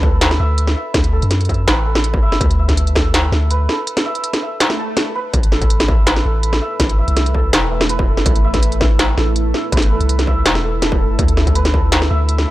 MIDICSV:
0, 0, Header, 1, 6, 480
1, 0, Start_track
1, 0, Tempo, 365854
1, 1240, Time_signature, 4, 2, 24, 8
1, 16409, End_track
2, 0, Start_track
2, 0, Title_t, "Santur"
2, 0, Program_c, 0, 15
2, 0, Note_on_c, 0, 71, 102
2, 0, Note_on_c, 0, 76, 83
2, 0, Note_on_c, 0, 81, 74
2, 43, Note_on_c, 0, 69, 82
2, 514, Note_off_c, 0, 76, 0
2, 519, Note_on_c, 0, 76, 103
2, 994, Note_off_c, 0, 76, 0
2, 1000, Note_on_c, 0, 76, 77
2, 1378, Note_off_c, 0, 81, 0
2, 1473, Note_off_c, 0, 69, 0
2, 1479, Note_on_c, 0, 69, 80
2, 1953, Note_off_c, 0, 76, 0
2, 1959, Note_on_c, 0, 76, 80
2, 2191, Note_off_c, 0, 71, 0
2, 2196, Note_on_c, 0, 71, 108
2, 2432, Note_off_c, 0, 69, 0
2, 2437, Note_on_c, 0, 69, 79
2, 2913, Note_off_c, 0, 76, 0
2, 2919, Note_on_c, 0, 76, 105
2, 3397, Note_off_c, 0, 76, 0
2, 3402, Note_on_c, 0, 76, 82
2, 3873, Note_off_c, 0, 69, 0
2, 3878, Note_on_c, 0, 69, 79
2, 4354, Note_off_c, 0, 76, 0
2, 4359, Note_on_c, 0, 76, 78
2, 4595, Note_off_c, 0, 71, 0
2, 4600, Note_on_c, 0, 71, 99
2, 4834, Note_off_c, 0, 69, 0
2, 4839, Note_on_c, 0, 69, 79
2, 5315, Note_off_c, 0, 76, 0
2, 5320, Note_on_c, 0, 76, 103
2, 5797, Note_off_c, 0, 76, 0
2, 5802, Note_on_c, 0, 76, 82
2, 6283, Note_on_c, 0, 81, 103
2, 6756, Note_off_c, 0, 71, 0
2, 6761, Note_on_c, 0, 71, 107
2, 7240, Note_off_c, 0, 69, 0
2, 7246, Note_on_c, 0, 69, 79
2, 7718, Note_off_c, 0, 76, 0
2, 7723, Note_on_c, 0, 76, 77
2, 7957, Note_off_c, 0, 71, 0
2, 7962, Note_on_c, 0, 71, 103
2, 8194, Note_off_c, 0, 69, 0
2, 8199, Note_on_c, 0, 69, 82
2, 8673, Note_off_c, 0, 76, 0
2, 8678, Note_on_c, 0, 76, 104
2, 8818, Note_off_c, 0, 81, 0
2, 9154, Note_off_c, 0, 76, 0
2, 9159, Note_on_c, 0, 76, 81
2, 9633, Note_off_c, 0, 69, 0
2, 9639, Note_on_c, 0, 69, 82
2, 10114, Note_off_c, 0, 76, 0
2, 10119, Note_on_c, 0, 76, 78
2, 10352, Note_off_c, 0, 71, 0
2, 10357, Note_on_c, 0, 71, 105
2, 10594, Note_off_c, 0, 69, 0
2, 10600, Note_on_c, 0, 69, 79
2, 11072, Note_off_c, 0, 76, 0
2, 11078, Note_on_c, 0, 76, 104
2, 11554, Note_off_c, 0, 76, 0
2, 11559, Note_on_c, 0, 76, 80
2, 12032, Note_off_c, 0, 69, 0
2, 12037, Note_on_c, 0, 69, 79
2, 12512, Note_off_c, 0, 76, 0
2, 12517, Note_on_c, 0, 76, 82
2, 12752, Note_off_c, 0, 71, 0
2, 12757, Note_on_c, 0, 71, 109
2, 12996, Note_off_c, 0, 69, 0
2, 13001, Note_on_c, 0, 69, 80
2, 13474, Note_off_c, 0, 76, 0
2, 13479, Note_on_c, 0, 76, 108
2, 13955, Note_off_c, 0, 69, 0
2, 13961, Note_on_c, 0, 69, 78
2, 14202, Note_on_c, 0, 81, 76
2, 14435, Note_off_c, 0, 69, 0
2, 14441, Note_on_c, 0, 69, 80
2, 14913, Note_off_c, 0, 76, 0
2, 14918, Note_on_c, 0, 76, 81
2, 15154, Note_off_c, 0, 71, 0
2, 15159, Note_on_c, 0, 71, 104
2, 15394, Note_off_c, 0, 69, 0
2, 15399, Note_on_c, 0, 69, 78
2, 15874, Note_off_c, 0, 76, 0
2, 15879, Note_on_c, 0, 76, 108
2, 16353, Note_off_c, 0, 76, 0
2, 16358, Note_on_c, 0, 76, 78
2, 16409, Note_off_c, 0, 69, 0
2, 16409, Note_off_c, 0, 71, 0
2, 16409, Note_off_c, 0, 76, 0
2, 16409, Note_off_c, 0, 81, 0
2, 16409, End_track
3, 0, Start_track
3, 0, Title_t, "Ambient pad"
3, 0, Program_c, 1, 92
3, 7004, Note_on_c, 1, 57, 78
3, 7005, Note_on_c, 1, 64, 72
3, 7005, Note_on_c, 1, 71, 88
3, 14629, Note_off_c, 1, 57, 0
3, 14630, Note_off_c, 1, 64, 0
3, 14630, Note_off_c, 1, 71, 0
3, 14671, Note_on_c, 1, 76, 90
3, 14675, Note_on_c, 1, 62, 85
3, 14675, Note_on_c, 1, 69, 75
3, 16409, Note_off_c, 1, 62, 0
3, 16409, Note_off_c, 1, 69, 0
3, 16409, Note_off_c, 1, 76, 0
3, 16409, End_track
4, 0, Start_track
4, 0, Title_t, "808-style bass"
4, 0, Program_c, 2, 38
4, 0, Note_on_c, 2, 38, 97
4, 506, Note_off_c, 2, 38, 0
4, 524, Note_on_c, 2, 38, 84
4, 987, Note_off_c, 2, 38, 0
4, 1238, Note_on_c, 2, 38, 94
4, 1589, Note_off_c, 2, 38, 0
4, 1612, Note_on_c, 2, 42, 83
4, 2188, Note_off_c, 2, 42, 0
4, 2201, Note_on_c, 2, 33, 80
4, 3031, Note_off_c, 2, 33, 0
4, 3158, Note_on_c, 2, 38, 94
4, 4344, Note_off_c, 2, 38, 0
4, 4357, Note_on_c, 2, 38, 87
4, 4824, Note_off_c, 2, 38, 0
4, 7002, Note_on_c, 2, 33, 95
4, 8186, Note_off_c, 2, 33, 0
4, 8205, Note_on_c, 2, 33, 84
4, 8668, Note_off_c, 2, 33, 0
4, 8919, Note_on_c, 2, 33, 94
4, 9270, Note_off_c, 2, 33, 0
4, 9287, Note_on_c, 2, 36, 82
4, 9866, Note_off_c, 2, 36, 0
4, 9880, Note_on_c, 2, 28, 79
4, 10710, Note_off_c, 2, 28, 0
4, 10837, Note_on_c, 2, 33, 96
4, 12024, Note_off_c, 2, 33, 0
4, 12038, Note_on_c, 2, 33, 88
4, 12504, Note_off_c, 2, 33, 0
4, 12757, Note_on_c, 2, 33, 97
4, 13109, Note_off_c, 2, 33, 0
4, 13126, Note_on_c, 2, 36, 83
4, 13705, Note_off_c, 2, 36, 0
4, 13721, Note_on_c, 2, 28, 82
4, 14551, Note_off_c, 2, 28, 0
4, 14682, Note_on_c, 2, 38, 97
4, 15866, Note_off_c, 2, 38, 0
4, 15885, Note_on_c, 2, 38, 84
4, 16348, Note_off_c, 2, 38, 0
4, 16409, End_track
5, 0, Start_track
5, 0, Title_t, "Swell"
5, 0, Program_c, 3, 103
5, 6040, Note_on_c, 3, 60, 62
5, 7000, Note_off_c, 3, 60, 0
5, 16409, End_track
6, 0, Start_track
6, 0, Title_t, "Drums"
6, 40, Note_on_c, 9, 36, 110
6, 171, Note_off_c, 9, 36, 0
6, 280, Note_on_c, 9, 38, 125
6, 280, Note_on_c, 9, 42, 78
6, 408, Note_on_c, 9, 40, 53
6, 411, Note_off_c, 9, 38, 0
6, 411, Note_off_c, 9, 42, 0
6, 539, Note_off_c, 9, 40, 0
6, 759, Note_on_c, 9, 42, 64
6, 885, Note_on_c, 9, 40, 54
6, 890, Note_off_c, 9, 42, 0
6, 1016, Note_off_c, 9, 40, 0
6, 1237, Note_on_c, 9, 36, 112
6, 1237, Note_on_c, 9, 40, 82
6, 1237, Note_on_c, 9, 42, 75
6, 1364, Note_off_c, 9, 42, 0
6, 1364, Note_on_c, 9, 42, 36
6, 1368, Note_off_c, 9, 36, 0
6, 1368, Note_off_c, 9, 40, 0
6, 1495, Note_off_c, 9, 42, 0
6, 1604, Note_on_c, 9, 42, 35
6, 1714, Note_off_c, 9, 42, 0
6, 1714, Note_on_c, 9, 40, 54
6, 1714, Note_on_c, 9, 42, 68
6, 1845, Note_off_c, 9, 40, 0
6, 1845, Note_off_c, 9, 42, 0
6, 1845, Note_on_c, 9, 42, 33
6, 1902, Note_off_c, 9, 42, 0
6, 1902, Note_on_c, 9, 42, 27
6, 1957, Note_on_c, 9, 36, 63
6, 1960, Note_off_c, 9, 42, 0
6, 1960, Note_on_c, 9, 42, 23
6, 2024, Note_off_c, 9, 42, 0
6, 2024, Note_on_c, 9, 42, 19
6, 2088, Note_off_c, 9, 36, 0
6, 2155, Note_off_c, 9, 42, 0
6, 2199, Note_on_c, 9, 38, 120
6, 2199, Note_on_c, 9, 40, 56
6, 2199, Note_on_c, 9, 42, 76
6, 2331, Note_off_c, 9, 38, 0
6, 2331, Note_off_c, 9, 40, 0
6, 2331, Note_off_c, 9, 42, 0
6, 2563, Note_on_c, 9, 40, 80
6, 2677, Note_on_c, 9, 42, 66
6, 2694, Note_off_c, 9, 40, 0
6, 2803, Note_on_c, 9, 36, 106
6, 2808, Note_off_c, 9, 42, 0
6, 2934, Note_off_c, 9, 36, 0
6, 3046, Note_on_c, 9, 40, 57
6, 3157, Note_on_c, 9, 36, 111
6, 3160, Note_on_c, 9, 42, 77
6, 3177, Note_off_c, 9, 40, 0
6, 3288, Note_off_c, 9, 36, 0
6, 3288, Note_off_c, 9, 42, 0
6, 3288, Note_on_c, 9, 42, 37
6, 3419, Note_off_c, 9, 42, 0
6, 3523, Note_on_c, 9, 36, 59
6, 3527, Note_on_c, 9, 40, 54
6, 3527, Note_on_c, 9, 42, 35
6, 3639, Note_off_c, 9, 42, 0
6, 3639, Note_on_c, 9, 42, 70
6, 3654, Note_off_c, 9, 36, 0
6, 3658, Note_off_c, 9, 40, 0
6, 3768, Note_off_c, 9, 42, 0
6, 3768, Note_on_c, 9, 42, 35
6, 3876, Note_on_c, 9, 36, 101
6, 3882, Note_on_c, 9, 40, 83
6, 3899, Note_off_c, 9, 42, 0
6, 4008, Note_off_c, 9, 36, 0
6, 4014, Note_off_c, 9, 40, 0
6, 4120, Note_on_c, 9, 38, 119
6, 4120, Note_on_c, 9, 42, 80
6, 4251, Note_off_c, 9, 38, 0
6, 4251, Note_off_c, 9, 42, 0
6, 4362, Note_on_c, 9, 40, 55
6, 4493, Note_off_c, 9, 40, 0
6, 4599, Note_on_c, 9, 42, 69
6, 4730, Note_off_c, 9, 42, 0
6, 4842, Note_on_c, 9, 40, 57
6, 4973, Note_off_c, 9, 40, 0
6, 5079, Note_on_c, 9, 42, 80
6, 5207, Note_off_c, 9, 42, 0
6, 5207, Note_on_c, 9, 40, 87
6, 5207, Note_on_c, 9, 42, 38
6, 5338, Note_off_c, 9, 40, 0
6, 5338, Note_off_c, 9, 42, 0
6, 5446, Note_on_c, 9, 42, 37
6, 5559, Note_off_c, 9, 42, 0
6, 5559, Note_on_c, 9, 42, 70
6, 5687, Note_off_c, 9, 42, 0
6, 5687, Note_on_c, 9, 40, 56
6, 5687, Note_on_c, 9, 42, 37
6, 5818, Note_off_c, 9, 40, 0
6, 5818, Note_off_c, 9, 42, 0
6, 6040, Note_on_c, 9, 38, 117
6, 6040, Note_on_c, 9, 42, 84
6, 6165, Note_on_c, 9, 40, 57
6, 6171, Note_off_c, 9, 38, 0
6, 6171, Note_off_c, 9, 42, 0
6, 6296, Note_off_c, 9, 40, 0
6, 6517, Note_on_c, 9, 40, 85
6, 6517, Note_on_c, 9, 42, 68
6, 6648, Note_off_c, 9, 40, 0
6, 6648, Note_off_c, 9, 42, 0
6, 7000, Note_on_c, 9, 42, 83
6, 7001, Note_on_c, 9, 36, 115
6, 7128, Note_off_c, 9, 42, 0
6, 7128, Note_on_c, 9, 42, 40
6, 7132, Note_off_c, 9, 36, 0
6, 7241, Note_on_c, 9, 40, 55
6, 7260, Note_off_c, 9, 42, 0
6, 7367, Note_on_c, 9, 36, 61
6, 7368, Note_on_c, 9, 42, 37
6, 7373, Note_off_c, 9, 40, 0
6, 7482, Note_off_c, 9, 42, 0
6, 7482, Note_on_c, 9, 42, 72
6, 7498, Note_off_c, 9, 36, 0
6, 7610, Note_off_c, 9, 42, 0
6, 7610, Note_on_c, 9, 40, 82
6, 7610, Note_on_c, 9, 42, 39
6, 7720, Note_on_c, 9, 36, 109
6, 7741, Note_off_c, 9, 40, 0
6, 7741, Note_off_c, 9, 42, 0
6, 7851, Note_off_c, 9, 36, 0
6, 7960, Note_on_c, 9, 38, 127
6, 7960, Note_on_c, 9, 42, 85
6, 8087, Note_on_c, 9, 40, 58
6, 8091, Note_off_c, 9, 38, 0
6, 8091, Note_off_c, 9, 42, 0
6, 8218, Note_off_c, 9, 40, 0
6, 8439, Note_on_c, 9, 42, 72
6, 8564, Note_on_c, 9, 40, 57
6, 8570, Note_off_c, 9, 42, 0
6, 8695, Note_off_c, 9, 40, 0
6, 8917, Note_on_c, 9, 40, 82
6, 8917, Note_on_c, 9, 42, 84
6, 8918, Note_on_c, 9, 36, 119
6, 9045, Note_off_c, 9, 42, 0
6, 9045, Note_on_c, 9, 42, 41
6, 9048, Note_off_c, 9, 40, 0
6, 9049, Note_off_c, 9, 36, 0
6, 9177, Note_off_c, 9, 42, 0
6, 9287, Note_on_c, 9, 42, 39
6, 9401, Note_off_c, 9, 42, 0
6, 9401, Note_on_c, 9, 40, 58
6, 9401, Note_on_c, 9, 42, 71
6, 9528, Note_off_c, 9, 42, 0
6, 9528, Note_on_c, 9, 42, 39
6, 9532, Note_off_c, 9, 40, 0
6, 9636, Note_on_c, 9, 36, 66
6, 9659, Note_off_c, 9, 42, 0
6, 9767, Note_off_c, 9, 36, 0
6, 9881, Note_on_c, 9, 38, 127
6, 9881, Note_on_c, 9, 40, 58
6, 9881, Note_on_c, 9, 42, 86
6, 10012, Note_off_c, 9, 38, 0
6, 10012, Note_off_c, 9, 40, 0
6, 10012, Note_off_c, 9, 42, 0
6, 10243, Note_on_c, 9, 40, 85
6, 10357, Note_on_c, 9, 42, 73
6, 10374, Note_off_c, 9, 40, 0
6, 10482, Note_on_c, 9, 36, 116
6, 10488, Note_off_c, 9, 42, 0
6, 10614, Note_off_c, 9, 36, 0
6, 10723, Note_on_c, 9, 40, 56
6, 10834, Note_on_c, 9, 42, 83
6, 10836, Note_on_c, 9, 36, 122
6, 10854, Note_off_c, 9, 40, 0
6, 10962, Note_off_c, 9, 42, 0
6, 10962, Note_on_c, 9, 42, 39
6, 10967, Note_off_c, 9, 36, 0
6, 11094, Note_off_c, 9, 42, 0
6, 11201, Note_on_c, 9, 40, 51
6, 11201, Note_on_c, 9, 42, 37
6, 11203, Note_on_c, 9, 36, 68
6, 11317, Note_off_c, 9, 42, 0
6, 11317, Note_on_c, 9, 42, 73
6, 11332, Note_off_c, 9, 40, 0
6, 11334, Note_off_c, 9, 36, 0
6, 11441, Note_off_c, 9, 42, 0
6, 11441, Note_on_c, 9, 42, 38
6, 11556, Note_on_c, 9, 36, 118
6, 11556, Note_on_c, 9, 40, 80
6, 11573, Note_off_c, 9, 42, 0
6, 11687, Note_off_c, 9, 36, 0
6, 11688, Note_off_c, 9, 40, 0
6, 11798, Note_on_c, 9, 38, 127
6, 11798, Note_on_c, 9, 42, 83
6, 11929, Note_off_c, 9, 38, 0
6, 11929, Note_off_c, 9, 42, 0
6, 12038, Note_on_c, 9, 40, 53
6, 12169, Note_off_c, 9, 40, 0
6, 12278, Note_on_c, 9, 42, 70
6, 12409, Note_off_c, 9, 42, 0
6, 12520, Note_on_c, 9, 40, 54
6, 12651, Note_off_c, 9, 40, 0
6, 12757, Note_on_c, 9, 36, 120
6, 12759, Note_on_c, 9, 42, 76
6, 12822, Note_on_c, 9, 40, 75
6, 12887, Note_off_c, 9, 42, 0
6, 12887, Note_on_c, 9, 42, 38
6, 12888, Note_off_c, 9, 36, 0
6, 12953, Note_off_c, 9, 40, 0
6, 13018, Note_off_c, 9, 42, 0
6, 13127, Note_on_c, 9, 42, 37
6, 13241, Note_off_c, 9, 42, 0
6, 13241, Note_on_c, 9, 42, 68
6, 13368, Note_off_c, 9, 42, 0
6, 13368, Note_on_c, 9, 40, 52
6, 13368, Note_on_c, 9, 42, 36
6, 13478, Note_on_c, 9, 36, 66
6, 13500, Note_off_c, 9, 40, 0
6, 13500, Note_off_c, 9, 42, 0
6, 13609, Note_off_c, 9, 36, 0
6, 13719, Note_on_c, 9, 38, 125
6, 13719, Note_on_c, 9, 42, 80
6, 13844, Note_on_c, 9, 40, 51
6, 13850, Note_off_c, 9, 38, 0
6, 13850, Note_off_c, 9, 42, 0
6, 13975, Note_off_c, 9, 40, 0
6, 14198, Note_on_c, 9, 40, 78
6, 14198, Note_on_c, 9, 42, 68
6, 14326, Note_on_c, 9, 36, 113
6, 14329, Note_off_c, 9, 40, 0
6, 14329, Note_off_c, 9, 42, 0
6, 14457, Note_off_c, 9, 36, 0
6, 14679, Note_on_c, 9, 36, 116
6, 14679, Note_on_c, 9, 42, 76
6, 14804, Note_off_c, 9, 42, 0
6, 14804, Note_on_c, 9, 42, 37
6, 14810, Note_off_c, 9, 36, 0
6, 14919, Note_on_c, 9, 40, 51
6, 14935, Note_off_c, 9, 42, 0
6, 15046, Note_on_c, 9, 36, 62
6, 15049, Note_on_c, 9, 42, 36
6, 15050, Note_off_c, 9, 40, 0
6, 15159, Note_off_c, 9, 42, 0
6, 15159, Note_on_c, 9, 42, 67
6, 15177, Note_off_c, 9, 36, 0
6, 15286, Note_off_c, 9, 42, 0
6, 15286, Note_on_c, 9, 40, 76
6, 15286, Note_on_c, 9, 42, 36
6, 15400, Note_on_c, 9, 36, 104
6, 15417, Note_off_c, 9, 40, 0
6, 15417, Note_off_c, 9, 42, 0
6, 15531, Note_off_c, 9, 36, 0
6, 15640, Note_on_c, 9, 38, 126
6, 15640, Note_on_c, 9, 42, 79
6, 15768, Note_on_c, 9, 40, 51
6, 15771, Note_off_c, 9, 38, 0
6, 15771, Note_off_c, 9, 42, 0
6, 15899, Note_off_c, 9, 40, 0
6, 16120, Note_on_c, 9, 42, 68
6, 16248, Note_on_c, 9, 40, 53
6, 16251, Note_off_c, 9, 42, 0
6, 16379, Note_off_c, 9, 40, 0
6, 16409, End_track
0, 0, End_of_file